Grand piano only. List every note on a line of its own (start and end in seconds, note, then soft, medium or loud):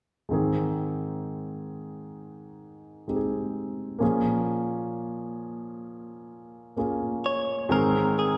0.29 3.97 G#2 soft
0.29 3.97 D#3 soft
0.29 3.04 G#3 soft
0.29 3.04 C4 soft
0.29 3.05 D#4 soft
0.33 3.06 G#4 soft
3.08 4.01 G#3 soft
3.08 4.01 C4 soft
3.08 4.02 D#4 soft
3.08 3.16 G4 soft
3.16 4.01 G#4 soft
3.99 7.67 A#2 soft
3.99 7.66 F3 soft
3.99 6.73 A#3 soft
3.99 6.74 C#4 soft
3.99 6.74 F4 soft
3.99 6.75 G#4 soft
6.77 7.70 A#3 soft
6.77 7.70 C#4 soft
6.77 7.71 F4 soft
6.77 7.70 G#4 soft
7.69 8.37 G#2 soft
7.69 8.37 D#3 soft
7.69 8.37 G#3 medium
7.69 8.37 C4 medium
7.69 8.37 D#4 medium
7.69 8.37 G#4 medium